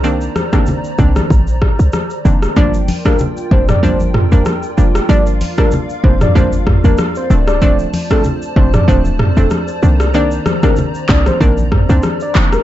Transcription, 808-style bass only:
X:1
M:4/4
L:1/16
Q:"Swing 16ths" 1/4=95
K:Gm
V:1 name="808-style bass" clef=bass
C,,3 z3 C,,2 B,,,3 C,, z2 F,,,2 | G,,,3 z3 F,,,2 G,,,3 G,,, z2 F,,,2 | G,,,3 z3 F,,,2 G,,,3 G,,, z2 D,,,2- | D,,,3 z3 F,,,2 D,,,3 F,,, z2 C,,2- |
C,,3 z3 C,,2 B,,,3 C,, z2 F,,,2 |]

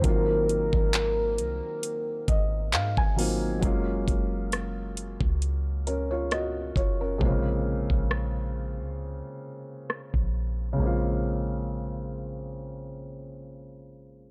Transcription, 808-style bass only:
X:1
M:4/4
L:1/16
Q:"Swing 16ths" 1/4=67
K:Bbm
V:1 name="808-style bass" clef=bass
A,,,3 A,,,3 C,, z3 A,,,2 A,, A,,,3 | G,,,2 G,,,4- G,,, D,,6- D,, G,,,2 | B,,,3 B,,,4 D,,2 z4 B,,,3 | B,,,16 |]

